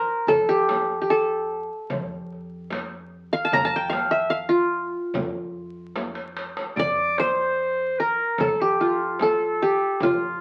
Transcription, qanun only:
0.00 0.34 A#4 loud
0.00 0.79 C5 medium
0.28 1.10 A4 medium
0.49 1.01 G4 medium
1.01 2.27 G4 medium
1.10 2.28 A4 medium
3.33 3.89 F5 medium
3.45 3.59 A5 loud
3.53 3.71 A#5 loud
3.65 4.42 A5 loud
3.76 4.59 G5 medium
3.90 4.17 F5 loud
4.11 4.36 E5 medium
4.30 5.19 F5 medium
4.49 6.45 F4 medium
6.79 7.78 D5 loud
7.20 8.25 C5 medium
8.00 8.46 A#4 medium
8.40 9.22 A4 medium
8.62 9.62 G4 medium
8.81 10.03 F4 medium
9.22 10.40 A4 medium
9.62 10.41 G4 medium
10.03 10.41 F4 medium

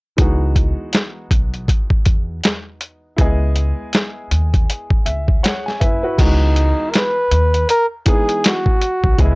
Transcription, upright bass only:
0.19 0.71 C#2 loud
1.31 1.64 B1 medium
1.90 muted upright bass stroke soft
2.06 2.39 E2 medium
3.18 3.71 C#2 loud
4.31 4.64 D#2 medium
4.90 muted upright bass stroke soft
5.06 5.39 C#2 medium
5.82 6.01 F#1 medium
6.19 6.71 C#2 loud
7.31 7.64 D#2 medium
9.04 9.17 B1 medium
9.18 9.35 C#2 loud

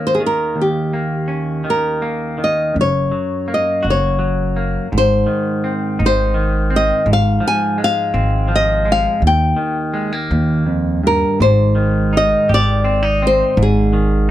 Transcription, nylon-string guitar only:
0.07 0.16 C5 medium
0.15 0.21 G#4 medium
0.26 0.61 A#4 medium
0.61 2.00 G4 medium
1.70 2.43 A#4 medium
2.44 2.75 D#5 medium
2.81 3.52 C#5 medium
3.54 3.85 D#5 medium
3.90 4.97 C#5 medium
4.98 5.71 C5 medium
6.06 6.76 C5 medium
6.76 7.10 D#5 medium
7.13 7.46 F5 medium
7.48 7.78 G#5 medium
7.84 8.55 F5 medium
8.56 8.89 D#5 medium
8.92 9.22 F5 medium
9.27 10.65 G5 medium
11.07 11.41 A#4 medium
11.42 12.15 C5 medium
12.17 12.52 D#5 medium
12.54 13.26 D5 medium
13.27 13.61 C5 medium
13.62 14.31 G#4 medium

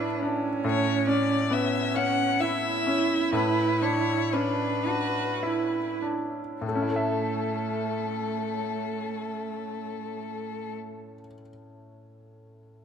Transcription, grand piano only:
0.00 0.60 A2 soft
0.00 0.66 C#4 soft
0.00 0.23 D4 soft
0.00 0.48 E4 soft
0.23 0.65 D4 soft
0.64 3.30 A2 soft
1.07 1.77 C#4 soft
1.50 1.95 B3 soft
1.94 2.68 C#4 soft
2.40 3.14 E4 soft
2.87 3.34 C#4 soft
3.32 6.58 A2 soft
3.82 4.65 D4 soft
4.33 4.87 C#4 soft
4.86 5.78 D4 soft
5.43 6.40 E4 soft
6.02 6.62 D4 soft
6.61 11.14 A2 soft
6.68 11.21 A3 soft
6.75 11.27 C#4 soft
6.82 11.34 E4 soft
6.89 11.41 A4 soft
6.96 11.48 E5 soft

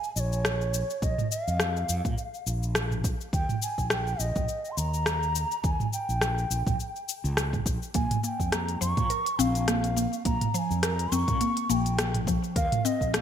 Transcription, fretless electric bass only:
0.16 0.82 A#1 medium
1.02 1.14 A#1 medium
1.48 1.83 F2 medium
1.89 2.00 F2 medium
2.05 2.14 A#2 medium
2.47 3.13 A#1 medium
3.33 3.45 D#2 medium
3.78 4.14 A#1 medium
4.19 4.31 A#1 medium
4.36 4.45 A#1 medium
4.77 5.44 D#2 medium
5.64 5.75 D#2 medium
6.09 6.44 A#1 medium
6.51 6.62 A#1 medium
6.67 6.76 A#1 medium
7.24 7.60 C#2 loud
7.66 7.77 A#1 medium
7.95 8.06 A#1 medium
8.40 8.75 F2 medium
8.81 8.93 F2 medium
8.97 9.06 A#2 medium
9.39 10.05 A#1 medium
10.25 10.37 A#1 medium
10.71 11.06 F2 medium
11.12 11.23 F2 medium
11.28 11.37 A#2 medium
11.70 12.36 A#1 medium
12.56 12.67 D#2 medium
13.01 13.21 A#1 medium

